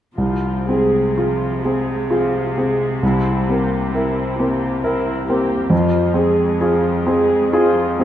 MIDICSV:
0, 0, Header, 1, 4, 480
1, 0, Start_track
1, 0, Key_signature, -4, "minor"
1, 0, Tempo, 1006711
1, 78, Time_signature, 3, 2, 24, 8
1, 556, Tempo, 938967
1, 1036, Tempo, 906344
1, 4180, End_track
2, 0, Start_track
2, 0, Title_t, "Grand piano"
2, 0, Program_c, 0, 0
2, 84, Note_on_c, 0, 36, 36
2, 162, Control_c, 0, 64, 127
2, 328, Note_on_c, 0, 60, 27
2, 335, Note_on_c, 0, 68, 30
2, 541, Note_off_c, 0, 60, 0
2, 544, Note_off_c, 0, 68, 0
2, 560, Note_on_c, 0, 65, 28
2, 563, Note_on_c, 0, 68, 26
2, 781, Note_off_c, 0, 65, 0
2, 782, Note_off_c, 0, 68, 0
2, 804, Note_on_c, 0, 68, 30
2, 806, Note_on_c, 0, 60, 27
2, 1018, Note_off_c, 0, 68, 0
2, 1019, Note_off_c, 0, 60, 0
2, 1036, Note_on_c, 0, 65, 32
2, 1038, Note_on_c, 0, 68, 34
2, 1257, Note_off_c, 0, 65, 0
2, 1258, Note_off_c, 0, 68, 0
2, 1287, Note_on_c, 0, 60, 25
2, 1287, Note_on_c, 0, 68, 31
2, 1504, Note_off_c, 0, 36, 0
2, 1504, Note_off_c, 0, 60, 0
2, 1505, Note_off_c, 0, 68, 0
2, 1524, Note_on_c, 0, 36, 40
2, 1530, Control_c, 0, 64, 0
2, 1602, Control_c, 0, 64, 127
2, 1772, Note_on_c, 0, 60, 27
2, 1778, Note_on_c, 0, 70, 28
2, 1988, Note_off_c, 0, 60, 0
2, 1991, Note_off_c, 0, 70, 0
2, 2014, Note_on_c, 0, 70, 33
2, 2017, Note_on_c, 0, 64, 30
2, 2225, Note_off_c, 0, 70, 0
2, 2227, Note_off_c, 0, 64, 0
2, 2250, Note_on_c, 0, 60, 33
2, 2254, Note_on_c, 0, 70, 29
2, 2462, Note_off_c, 0, 60, 0
2, 2464, Note_off_c, 0, 70, 0
2, 2483, Note_on_c, 0, 64, 35
2, 2485, Note_on_c, 0, 70, 40
2, 2696, Note_off_c, 0, 64, 0
2, 2697, Note_off_c, 0, 70, 0
2, 2725, Note_on_c, 0, 70, 33
2, 2727, Note_on_c, 0, 60, 35
2, 2930, Note_off_c, 0, 36, 0
2, 2934, Note_off_c, 0, 70, 0
2, 2935, Note_off_c, 0, 60, 0
2, 2939, Note_on_c, 0, 41, 52
2, 2958, Control_c, 0, 64, 0
2, 3027, Control_c, 0, 64, 127
2, 3173, Note_on_c, 0, 60, 34
2, 3177, Note_on_c, 0, 68, 38
2, 3397, Note_off_c, 0, 60, 0
2, 3399, Note_off_c, 0, 68, 0
2, 3421, Note_on_c, 0, 68, 43
2, 3425, Note_on_c, 0, 65, 37
2, 3645, Note_off_c, 0, 68, 0
2, 3647, Note_off_c, 0, 65, 0
2, 3663, Note_on_c, 0, 60, 38
2, 3669, Note_on_c, 0, 68, 38
2, 3888, Note_off_c, 0, 60, 0
2, 3891, Note_off_c, 0, 68, 0
2, 3910, Note_on_c, 0, 68, 52
2, 3911, Note_on_c, 0, 65, 46
2, 4135, Note_off_c, 0, 68, 0
2, 4136, Note_off_c, 0, 65, 0
2, 4155, Note_on_c, 0, 60, 38
2, 4180, Note_off_c, 0, 41, 0
2, 4180, Note_off_c, 0, 60, 0
2, 4180, End_track
3, 0, Start_track
3, 0, Title_t, "Viola section"
3, 0, Program_c, 1, 48
3, 76, Note_on_c, 1, 65, 31
3, 77, Note_on_c, 1, 53, 29
3, 302, Note_off_c, 1, 65, 0
3, 303, Note_off_c, 1, 53, 0
3, 324, Note_on_c, 1, 68, 27
3, 326, Note_on_c, 1, 56, 26
3, 552, Note_on_c, 1, 53, 28
3, 556, Note_on_c, 1, 65, 30
3, 558, Note_off_c, 1, 68, 0
3, 559, Note_off_c, 1, 56, 0
3, 794, Note_on_c, 1, 56, 27
3, 797, Note_off_c, 1, 53, 0
3, 799, Note_off_c, 1, 65, 0
3, 799, Note_on_c, 1, 68, 29
3, 1033, Note_off_c, 1, 56, 0
3, 1036, Note_off_c, 1, 68, 0
3, 1037, Note_on_c, 1, 65, 29
3, 1040, Note_on_c, 1, 53, 28
3, 1262, Note_off_c, 1, 65, 0
3, 1264, Note_off_c, 1, 53, 0
3, 1276, Note_on_c, 1, 56, 29
3, 1279, Note_on_c, 1, 68, 28
3, 1520, Note_off_c, 1, 56, 0
3, 1522, Note_off_c, 1, 68, 0
3, 1523, Note_on_c, 1, 60, 31
3, 1526, Note_on_c, 1, 64, 30
3, 1750, Note_off_c, 1, 60, 0
3, 1752, Note_off_c, 1, 64, 0
3, 1766, Note_on_c, 1, 67, 29
3, 1769, Note_on_c, 1, 58, 30
3, 1998, Note_on_c, 1, 60, 28
3, 2002, Note_on_c, 1, 64, 30
3, 2007, Note_off_c, 1, 67, 0
3, 2008, Note_off_c, 1, 58, 0
3, 2239, Note_off_c, 1, 60, 0
3, 2240, Note_on_c, 1, 67, 29
3, 2241, Note_off_c, 1, 64, 0
3, 2241, Note_on_c, 1, 58, 31
3, 2477, Note_on_c, 1, 64, 37
3, 2478, Note_off_c, 1, 58, 0
3, 2478, Note_off_c, 1, 67, 0
3, 2480, Note_on_c, 1, 60, 31
3, 2697, Note_off_c, 1, 64, 0
3, 2699, Note_off_c, 1, 60, 0
3, 2717, Note_on_c, 1, 67, 35
3, 2718, Note_on_c, 1, 58, 33
3, 2951, Note_off_c, 1, 58, 0
3, 2951, Note_off_c, 1, 67, 0
3, 2953, Note_on_c, 1, 53, 36
3, 2957, Note_on_c, 1, 65, 44
3, 3170, Note_off_c, 1, 53, 0
3, 3173, Note_off_c, 1, 65, 0
3, 3181, Note_on_c, 1, 68, 35
3, 3182, Note_on_c, 1, 56, 37
3, 3422, Note_off_c, 1, 68, 0
3, 3423, Note_off_c, 1, 56, 0
3, 3424, Note_on_c, 1, 53, 45
3, 3426, Note_on_c, 1, 65, 36
3, 3663, Note_on_c, 1, 68, 39
3, 3664, Note_on_c, 1, 56, 37
3, 3667, Note_off_c, 1, 53, 0
3, 3668, Note_off_c, 1, 65, 0
3, 3903, Note_on_c, 1, 65, 45
3, 3907, Note_on_c, 1, 53, 45
3, 3909, Note_off_c, 1, 56, 0
3, 3909, Note_off_c, 1, 68, 0
3, 4136, Note_off_c, 1, 65, 0
3, 4138, Note_off_c, 1, 53, 0
3, 4160, Note_on_c, 1, 68, 42
3, 4161, Note_on_c, 1, 56, 39
3, 4180, Note_off_c, 1, 56, 0
3, 4180, Note_off_c, 1, 68, 0
3, 4180, End_track
4, 0, Start_track
4, 0, Title_t, "Cello section"
4, 0, Program_c, 2, 48
4, 75, Note_on_c, 2, 48, 36
4, 2927, Note_off_c, 2, 48, 0
4, 2946, Note_on_c, 2, 41, 41
4, 4180, Note_off_c, 2, 41, 0
4, 4180, End_track
0, 0, End_of_file